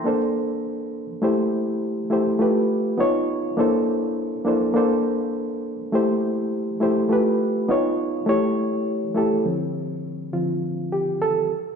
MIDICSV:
0, 0, Header, 1, 2, 480
1, 0, Start_track
1, 0, Tempo, 587084
1, 47, Time_signature, 4, 2, 24, 8
1, 9611, End_track
2, 0, Start_track
2, 0, Title_t, "Reed electric piano"
2, 0, Program_c, 0, 4
2, 0, Control_c, 0, 64, 127
2, 0, Note_on_c, 0, 84, 59
2, 34, Note_on_c, 0, 58, 69
2, 46, Note_on_c, 0, 62, 68
2, 52, Note_on_c, 0, 69, 71
2, 59, Control_c, 0, 64, 0
2, 64, Note_on_c, 0, 72, 82
2, 168, Note_off_c, 0, 84, 0
2, 223, Control_c, 0, 64, 127
2, 860, Note_off_c, 0, 58, 0
2, 866, Note_off_c, 0, 62, 0
2, 869, Note_off_c, 0, 69, 0
2, 875, Note_off_c, 0, 72, 0
2, 995, Note_on_c, 0, 57, 84
2, 1003, Note_on_c, 0, 64, 85
2, 1011, Note_on_c, 0, 67, 76
2, 1016, Note_on_c, 0, 72, 91
2, 1020, Control_c, 0, 64, 0
2, 1152, Control_c, 0, 64, 127
2, 1620, Note_off_c, 0, 57, 0
2, 1624, Note_off_c, 0, 64, 0
2, 1628, Note_off_c, 0, 67, 0
2, 1630, Note_off_c, 0, 72, 0
2, 1717, Note_on_c, 0, 57, 71
2, 1724, Note_on_c, 0, 64, 67
2, 1733, Note_on_c, 0, 67, 67
2, 1740, Note_on_c, 0, 72, 84
2, 1929, Note_off_c, 0, 57, 0
2, 1933, Note_off_c, 0, 64, 0
2, 1937, Note_off_c, 0, 67, 0
2, 1941, Note_off_c, 0, 72, 0
2, 1954, Note_on_c, 0, 57, 76
2, 1962, Note_on_c, 0, 65, 66
2, 1972, Note_on_c, 0, 67, 69
2, 1978, Note_on_c, 0, 71, 82
2, 1981, Control_c, 0, 64, 0
2, 2108, Control_c, 0, 64, 127
2, 2433, Note_on_c, 0, 59, 88
2, 2441, Note_off_c, 0, 65, 0
2, 2442, Note_off_c, 0, 57, 0
2, 2444, Note_on_c, 0, 63, 81
2, 2451, Note_off_c, 0, 67, 0
2, 2451, Note_on_c, 0, 65, 78
2, 2454, Note_off_c, 0, 71, 0
2, 2456, Note_on_c, 0, 73, 101
2, 2460, Control_c, 0, 64, 0
2, 2584, Control_c, 0, 64, 127
2, 2853, Note_off_c, 0, 59, 0
2, 2859, Note_off_c, 0, 63, 0
2, 2862, Note_off_c, 0, 65, 0
2, 2865, Note_off_c, 0, 73, 0
2, 2918, Note_on_c, 0, 58, 92
2, 2923, Note_on_c, 0, 62, 81
2, 2931, Note_on_c, 0, 64, 77
2, 2937, Note_on_c, 0, 69, 84
2, 2941, Control_c, 0, 64, 0
2, 2943, Note_on_c, 0, 72, 99
2, 3104, Control_c, 0, 64, 127
2, 3542, Note_off_c, 0, 58, 0
2, 3544, Note_off_c, 0, 62, 0
2, 3548, Note_off_c, 0, 64, 0
2, 3551, Note_off_c, 0, 69, 0
2, 3554, Note_off_c, 0, 72, 0
2, 3635, Note_on_c, 0, 58, 82
2, 3644, Note_on_c, 0, 62, 75
2, 3651, Note_on_c, 0, 64, 69
2, 3653, Note_on_c, 0, 69, 64
2, 3663, Note_on_c, 0, 72, 81
2, 3849, Note_off_c, 0, 58, 0
2, 3853, Note_off_c, 0, 62, 0
2, 3857, Note_off_c, 0, 64, 0
2, 3858, Note_off_c, 0, 69, 0
2, 3863, Note_off_c, 0, 72, 0
2, 3875, Note_on_c, 0, 58, 75
2, 3884, Note_on_c, 0, 62, 71
2, 3891, Note_on_c, 0, 69, 66
2, 3899, Note_on_c, 0, 72, 85
2, 3903, Control_c, 0, 64, 0
2, 4045, Control_c, 0, 64, 127
2, 4701, Note_off_c, 0, 58, 0
2, 4706, Note_off_c, 0, 62, 0
2, 4709, Note_off_c, 0, 69, 0
2, 4713, Note_off_c, 0, 72, 0
2, 4843, Note_on_c, 0, 57, 87
2, 4850, Note_on_c, 0, 64, 79
2, 4858, Note_on_c, 0, 67, 81
2, 4861, Control_c, 0, 64, 0
2, 4867, Note_on_c, 0, 72, 100
2, 5023, Control_c, 0, 64, 127
2, 5464, Note_off_c, 0, 57, 0
2, 5467, Note_off_c, 0, 64, 0
2, 5471, Note_off_c, 0, 67, 0
2, 5476, Note_off_c, 0, 72, 0
2, 5559, Note_on_c, 0, 57, 77
2, 5570, Note_on_c, 0, 64, 79
2, 5577, Note_on_c, 0, 67, 71
2, 5583, Note_on_c, 0, 72, 92
2, 5771, Note_off_c, 0, 57, 0
2, 5776, Note_off_c, 0, 64, 0
2, 5780, Note_off_c, 0, 67, 0
2, 5783, Note_off_c, 0, 72, 0
2, 5800, Note_on_c, 0, 57, 75
2, 5808, Note_on_c, 0, 65, 70
2, 5818, Note_on_c, 0, 67, 64
2, 5822, Control_c, 0, 64, 0
2, 5827, Note_on_c, 0, 71, 92
2, 5954, Control_c, 0, 64, 127
2, 6283, Note_on_c, 0, 59, 92
2, 6285, Note_off_c, 0, 57, 0
2, 6287, Note_on_c, 0, 63, 81
2, 6289, Note_off_c, 0, 65, 0
2, 6294, Note_off_c, 0, 67, 0
2, 6297, Note_on_c, 0, 65, 82
2, 6299, Note_off_c, 0, 71, 0
2, 6300, Control_c, 0, 64, 0
2, 6305, Note_on_c, 0, 73, 94
2, 6467, Control_c, 0, 64, 127
2, 6698, Note_off_c, 0, 59, 0
2, 6700, Note_off_c, 0, 63, 0
2, 6705, Note_off_c, 0, 65, 0
2, 6709, Note_off_c, 0, 73, 0
2, 6755, Note_on_c, 0, 57, 95
2, 6766, Note_on_c, 0, 64, 82
2, 6774, Note_on_c, 0, 67, 77
2, 6778, Note_on_c, 0, 73, 92
2, 6779, Control_c, 0, 64, 0
2, 6915, Control_c, 0, 64, 127
2, 7379, Note_off_c, 0, 57, 0
2, 7385, Note_off_c, 0, 64, 0
2, 7389, Note_off_c, 0, 67, 0
2, 7391, Note_off_c, 0, 73, 0
2, 7476, Note_on_c, 0, 57, 77
2, 7488, Note_on_c, 0, 64, 72
2, 7495, Note_on_c, 0, 67, 73
2, 7500, Note_on_c, 0, 69, 86
2, 7688, Note_off_c, 0, 57, 0
2, 7694, Note_off_c, 0, 64, 0
2, 7698, Note_off_c, 0, 67, 0
2, 7700, Note_off_c, 0, 69, 0
2, 7727, Note_on_c, 0, 50, 45
2, 7728, Note_on_c, 0, 53, 43
2, 7733, Note_on_c, 0, 60, 56
2, 7739, Control_c, 0, 64, 0
2, 7859, Control_c, 0, 64, 127
2, 8436, Note_off_c, 0, 50, 0
2, 8439, Note_off_c, 0, 53, 0
2, 8443, Note_off_c, 0, 60, 0
2, 8446, Note_on_c, 0, 50, 48
2, 8447, Note_on_c, 0, 65, 73
2, 8448, Note_on_c, 0, 53, 40
2, 8453, Note_on_c, 0, 60, 45
2, 8663, Note_off_c, 0, 50, 0
2, 8664, Note_off_c, 0, 53, 0
2, 8667, Note_off_c, 0, 60, 0
2, 8895, Note_off_c, 0, 65, 0
2, 8932, Note_on_c, 0, 67, 81
2, 9153, Note_off_c, 0, 67, 0
2, 9170, Note_on_c, 0, 69, 96
2, 9392, Note_off_c, 0, 69, 0
2, 9418, Control_c, 0, 64, 0
2, 9571, Control_c, 0, 64, 127
2, 9611, End_track
0, 0, End_of_file